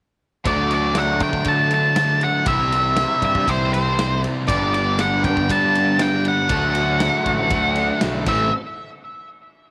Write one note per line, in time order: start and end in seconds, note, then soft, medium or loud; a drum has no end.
0.45 1.21 D2 medium
0.45 1.44 D3 medium
0.45 0.70 D3 medium
0.45 1.44 F#3 medium
0.45 1.45 A3 medium
0.45 0.71 A3 medium
0.45 1.45 D4 loud
0.45 0.71 D4 medium
0.45 1.46 F#4 medium
0.45 0.72 F#4 medium
0.45 0.71 A4 medium
0.45 0.72 D5 medium
0.45 kick medium
0.45 ride medium
0.71 0.97 F#4 soft
0.71 0.97 A4 soft
0.71 0.98 D5 medium
0.71 ride medium
0.76 0.96 D4 soft
0.95 1.72 A3 medium
0.95 1.72 D4 medium
0.95 1.71 F#4 medium
0.95 1.22 F#5 medium
0.95 snare loud
0.95 ride medium
1.00 1.70 A4 medium
1.20 1.31 D3 medium
1.20 1.48 G5 loud
1.20 kick medium
1.20 ride medium
1.33 1.43 D2 medium
1.33 kick medium
1.45 2.44 D3 medium
1.45 2.23 D3 medium
1.45 2.45 F#3 medium
1.45 2.46 A3 medium
1.45 2.46 D4 medium
1.45 2.46 F#4 medium
1.45 1.73 A5 loud
1.45 kick medium
1.45 ride medium
1.71 1.97 D4 soft
1.71 1.97 F#4 soft
1.71 1.96 A4 soft
1.71 2.24 A5 medium
1.71 ride medium
1.96 2.22 A3 medium
1.96 2.22 D4 medium
1.96 2.23 F#4 medium
1.96 2.21 A4 medium
1.96 snare loud
1.96 ride loud
2.21 2.48 F#4 soft
2.21 2.47 A4 soft
2.21 2.47 F#5 medium
2.21 ride medium
2.26 2.48 D4 soft
2.45 3.05 C2 medium
2.45 3.44 C3 medium
2.45 2.72 C3 medium
2.45 3.45 E3 medium
2.45 2.72 E3 medium
2.45 3.46 G3 medium
2.45 2.72 G3 medium
2.45 2.73 C4 medium
2.45 3.46 E4 medium
2.45 2.72 E4 medium
2.45 3.48 G4 medium
2.45 3.24 E5 medium
2.45 kick loud
2.45 ride medium
2.49 2.71 C5 medium
2.72 2.96 G3 soft
2.72 2.98 C4 soft
2.72 2.98 E4 medium
2.72 2.97 C5 medium
2.72 ride medium
2.97 3.73 G3 medium
2.97 3.74 C4 medium
2.97 3.73 E4 medium
2.97 snare loud
2.97 ride medium
3.01 3.71 C5 medium
3.22 3.32 G2 medium
3.22 3.50 E5 medium
3.22 kick medium
3.22 ride medium
3.35 3.45 G2 medium
3.35 kick medium
3.45 4.25 C2 medium
3.45 4.46 C3 medium
3.45 4.46 E3 medium
3.45 4.46 G3 medium
3.45 4.47 E4 medium
3.45 4.48 G4 medium
3.45 kick medium
3.45 ride medium
3.49 3.72 C5 medium
3.72 3.96 G3 soft
3.72 3.98 C4 soft
3.72 3.98 E4 soft
3.72 3.98 C5 medium
3.72 4.20 C5 medium
3.72 ride medium
3.98 4.23 G3 medium
3.98 4.24 C4 medium
3.98 4.23 E4 medium
3.98 4.22 C5 medium
3.98 snare loud
3.98 ride medium
4.23 4.46 G3 soft
4.23 4.47 C4 soft
4.23 4.48 E4 soft
4.23 4.48 C5 medium
4.23 ride medium
4.46 5.25 G1 medium
4.46 5.47 G2 medium
4.46 5.47 D3 loud
4.46 4.73 G3 medium
4.46 5.48 G3 medium
4.46 5.48 B3 loud
4.46 6.49 B3 medium
4.46 4.73 D4 medium
4.46 5.50 D4 loud
4.46 6.49 D4 medium
4.46 4.74 G4 medium
4.46 6.49 G4 medium
4.46 5.49 G4 loud
4.46 4.73 B4 medium
4.46 4.73 D5 medium
4.46 6.49 D5 medium
4.46 kick loud
4.46 ride medium
4.74 4.98 D4 soft
4.74 4.99 G4 medium
4.74 4.99 B4 medium
4.74 5.00 D5 medium
4.74 ride medium
4.97 5.74 G3 medium
4.97 5.75 D4 medium
4.97 5.75 G4 medium
4.97 5.73 B4 medium
4.97 5.25 F#5 loud
4.97 snare loud
4.97 ride medium
5.24 5.34 G2 medium
5.24 5.51 G5 loud
5.24 kick medium
5.24 ride medium
5.37 5.47 G1 medium
5.37 kick medium
5.48 6.48 G2 medium
5.48 6.28 G2 medium
5.48 6.48 D3 medium
5.48 6.48 G3 medium
5.48 6.49 B3 medium
5.48 6.50 D4 medium
5.48 6.50 G4 medium
5.48 6.03 A5 loud
5.48 kick medium
5.48 ride medium
5.74 6.00 G4 soft
5.74 6.00 B4 medium
5.74 ride medium
5.78 5.99 D4 soft
5.99 6.25 G3 medium
5.99 6.25 D4 medium
5.99 6.25 G4 medium
5.99 6.23 B4 medium
5.99 6.24 G5 medium
5.99 snare loud
5.99 ride loud
6.24 6.49 D4 soft
6.24 6.51 G4 soft
6.24 6.50 B4 medium
6.24 7.99 F#5 medium
6.24 ride medium
6.49 7.09 D2 medium
6.49 7.49 D3 loud
6.49 6.75 D3 medium
6.49 8.27 F#3 loud
6.49 7.50 A3 loud
6.49 6.76 A3 medium
6.49 8.25 A3 medium
6.49 8.25 D4 medium
6.49 6.76 D4 medium
6.49 7.50 D4 loud
6.49 8.25 F#4 medium
6.49 6.75 F#4 medium
6.49 7.51 F#4 loud
6.49 6.73 A4 medium
6.49 8.26 D5 medium
6.49 kick loud
6.49 ride medium
6.74 7.00 D4 soft
6.74 7.02 F#4 medium
6.74 7.00 A4 medium
6.74 ride medium
7.00 7.76 A3 medium
7.00 7.77 D4 medium
7.00 7.77 F#4 medium
7.00 7.75 A4 medium
7.00 snare loud
7.00 ride medium
7.26 7.36 A1 medium
7.26 kick medium
7.26 ride medium
7.38 7.48 A1 medium
7.50 7.90 D2 medium
7.50 8.27 D3 medium
7.50 8.26 A3 medium
7.50 8.27 D4 medium
7.50 8.27 F#4 medium
7.50 kick loud
7.50 ride medium
7.76 8.03 F#4 medium
7.76 8.02 A4 medium
7.76 ride medium
7.80 8.02 D4 medium
8.01 8.25 B1 medium
8.01 8.27 A3 medium
8.01 8.28 D4 medium
8.01 8.28 F#4 medium
8.01 snare loud
8.01 ride medium
8.06 8.28 A4 medium
8.26 8.51 A1 loud
8.26 8.47 A2 medium
8.26 8.47 E3 loud
8.26 8.48 E3 medium
8.26 8.62 A3 medium
8.26 8.47 A3 medium
8.26 8.48 A3 medium
8.26 8.62 C4 medium
8.26 8.48 C4 loud
8.26 8.48 C4 medium
8.26 8.62 E4 medium
8.26 8.48 E4 loud
8.26 8.48 E4 medium
8.26 8.49 A4 medium
8.26 8.62 C5 medium
8.26 8.51 E5 medium
8.26 kick loud
8.26 crash medium